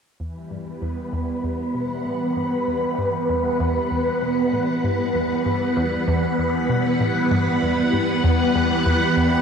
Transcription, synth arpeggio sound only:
0.20 E2
0.51 G2
0.82 E2
1.13 E2
1.44 E2
1.75 B2
2.06 A2
2.36 G2
2.68 E2
2.98 G2
3.29 E2
3.60 E2
3.91 E2
4.22 B2
4.53 A2
4.84 G2
5.15 E2
5.46 G2
5.77 E2
6.08 E2
6.39 E2
6.69 B2
7.00 A2
7.31 G2
7.62 E2
7.93 G2
8.24 E2
8.55 E2
8.86 E2
9.17 E2

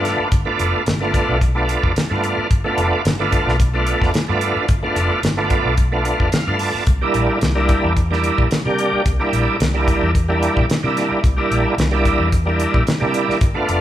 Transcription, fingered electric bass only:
Already playing: G2
0.19 muted fingered electric bass stroke
0.32 G1
0.60 F1
0.87 G1
1.29 B1
1.83 F1
1.96 muted fingered electric bass stroke
2.11 G2
2.38 muted fingered electric bass stroke
2.51 G1
2.78 F1
3.05 G1
3.47 B1
4.02 F1
4.29 G2
4.56 muted fingered electric bass stroke
4.69 G1
4.96 F1
5.23 G1
5.65 B1
6.20 F1
6.33 muted fingered electric bass stroke
6.47 G2
6.75 muted fingered electric bass stroke
6.87 C2
7.15 A#1
7.42 C2
7.84 E2
8.38 A#1
8.65 C3
8.93 muted fingered electric bass stroke
9.06 C2
9.33 A#1
9.60 C2
10.02 E2
10.57 A#1
10.83 C3
11.11 muted fingered electric bass stroke
11.24 C2
11.51 A#1
11.78 C2
12.20 E2
12.74 A#1
13.02 C3
13.29 muted fingered electric bass stroke
13.41 G1
13.69 F1

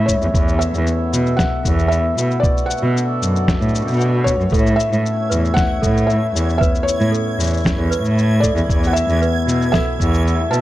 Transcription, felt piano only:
0.06 C#5
0.59 E5
1.37 F#5
1.88 E5
2.40 D5
2.66 F#5
4.24 C#5
4.76 E5
5.54 F#5
6.07 E5
6.58 E5
6.83 C#5
8.40 D5
8.87 F#5
8.93 E5
9.72 E5
10.51 A5

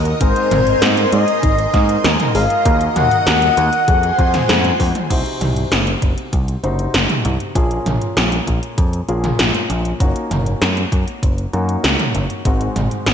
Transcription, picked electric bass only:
Already playing: D#2
0.21 G#1
0.51 G#1
0.82 G#2
1.13 G#2
1.43 G#1
1.74 G#2
2.04 D#2
2.35 G#1
2.66 D#2
2.96 D#2
3.27 D#2
3.57 D#2
3.88 F2
4.19 F2
4.49 F2
4.80 F2
5.10 C2
5.41 C2
5.72 F#1
6.02 F#1
6.33 C2
6.63 F#1
6.94 F#1
7.25 C2
7.55 A#1
7.86 A#1
8.17 A#1
8.47 A#1
8.78 F2
9.09 A#1
9.39 A#1
9.70 A#1
10.00 F#1
10.31 F#1
10.62 F#2
10.92 F#2
11.23 F#1
11.53 F#2
11.84 C#2
12.15 F#1
12.45 G#1
12.76 G#1
13.07 G#1

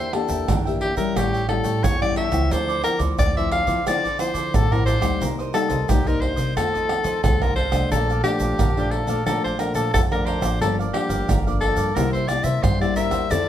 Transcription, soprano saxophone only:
Already playing: C5
0.14 A4
0.82 G4
0.97 A#4
1.17 G4
1.49 A4
1.84 C#5
2.02 D5
2.18 E5
2.52 C5
2.84 A#4
3.19 D5
3.37 E5
3.52 F5
3.88 D5
4.20 C5
4.55 A4
4.72 A#4
4.86 C5
5.54 A4
5.89 G4
6.07 A#4
6.22 C5
6.57 A4
7.24 A4
7.42 A#4
7.56 C5
7.92 A4
8.24 G4
8.91 A4
9.26 A4
9.44 C5
9.60 A#4
9.75 A4
9.94 A4
10.12 A#4
10.26 C5
10.62 A4
10.94 G4
11.61 A4
11.95 A#4
12.13 C5
12.28 D5
12.44 E5
12.63 C5
12.81 D5
12.97 E5
13.31 D5

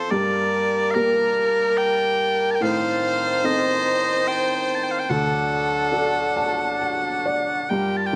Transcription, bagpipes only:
Already playing: C5
0.11 D5
0.91 A#4 F5
1.77 G5
2.51 A5
2.55 G5
2.62 F5
3.45 D#5
4.28 G5
4.75 A5
4.83 G5
4.91 F5
5.00 G5
5.10 F#5
7.70 G5
7.97 A5
8.06 G5

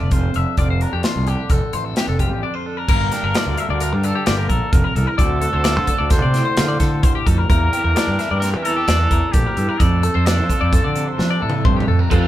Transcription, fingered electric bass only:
0.01 F1
0.35 F1
0.58 F1
0.93 F2
1.16 C2
1.50 F1
1.73 A1
2.08 F1
2.31 A1
2.89 G1
3.23 G1
3.46 D2
3.69 D2
3.92 G2
4.27 G1
4.50 A#1
4.73 F1
4.95 C2
5.19 D2
5.54 D2
5.77 D3
6.00 D2
6.23 C3
6.57 D3
6.81 D3
7.04 D2
7.27 F2
7.50 E2
7.84 E2
8.07 G2
8.31 G2
8.54 E3
8.88 E2
9.11 E2
9.34 A#1
9.57 G2
9.80 F2
10.15 F2
10.38 F3
10.61 F2
10.85 D3
11.19 F3
11.42 A2
11.65 G2
11.88 F2
12.12 F2

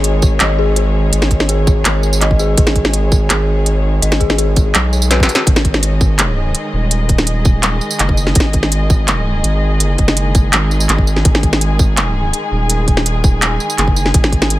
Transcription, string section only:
Already playing: D#3 G#3 G#4 C#5
5.47 D#3
5.57 D#5
5.68 G#3
5.83 G#4
11.34 G#5

